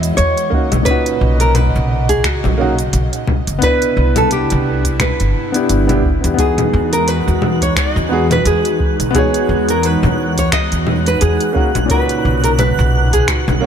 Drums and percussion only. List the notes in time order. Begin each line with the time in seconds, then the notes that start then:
0.03 closed hi-hat, shaker
0.18 closed hi-hat, shaker
0.37 closed hi-hat, shaker
0.52 kick
0.72 closed hi-hat, low conga, shaker
0.86 kick, closed hi-hat, shaker
1.06 closed hi-hat, shaker
1.40 closed hi-hat, shaker
1.55 closed hi-hat, low conga, shaker
1.75 shaker
2.09 kick, closed hi-hat, shaker
2.24 finger snap, kick, closed hi-hat, shaker
2.44 low conga, shaker
2.79 closed hi-hat, shaker
2.93 closed hi-hat, shaker
3.13 closed hi-hat, shaker
3.28 kick, low conga
3.47 closed hi-hat, shaker
3.62 kick, closed hi-hat, shaker
3.82 closed hi-hat, shaker
4.16 closed hi-hat, low conga, shaker
4.31 closed hi-hat, shaker
4.50 closed hi-hat, shaker
4.85 kick, closed hi-hat, shaker
5.00 finger snap, kick, closed hi-hat, low conga, shaker
5.20 closed hi-hat, shaker
5.54 closed hi-hat, shaker
5.69 closed hi-hat, shaker
5.89 closed hi-hat, low conga, shaker
6.04 kick
6.24 closed hi-hat, shaker
6.38 kick, closed hi-hat, shaker
6.58 closed hi-hat, low conga, shaker
6.93 closed hi-hat, shaker
7.08 closed hi-hat, shaker
7.28 shaker
7.42 low conga
7.62 kick, closed hi-hat, shaker
7.77 finger snap, kick, closed hi-hat, shaker
7.97 shaker
8.31 closed hi-hat, low conga, shaker
8.45 closed hi-hat, shaker
8.65 closed hi-hat, shaker
8.80 kick
9.00 closed hi-hat, shaker
9.15 kick, closed hi-hat, low conga, shaker
9.34 closed hi-hat, shaker
9.69 closed hi-hat, shaker
9.83 closed hi-hat, shaker
10.03 low conga, shaker
10.38 kick, closed hi-hat, shaker
10.52 finger snap, kick, closed hi-hat, shaker
10.72 closed hi-hat, shaker
10.87 low conga
11.06 closed hi-hat, shaker
11.21 closed hi-hat, shaker
11.40 closed hi-hat, shaker
11.56 kick
11.75 closed hi-hat, low conga, shaker
11.90 kick, closed hi-hat, shaker
12.09 closed hi-hat, shaker
12.44 closed hi-hat, shaker
12.59 closed hi-hat, low conga, shaker
12.79 shaker
13.13 kick, closed hi-hat, shaker
13.28 finger snap, kick, closed hi-hat, shaker
13.48 low conga, shaker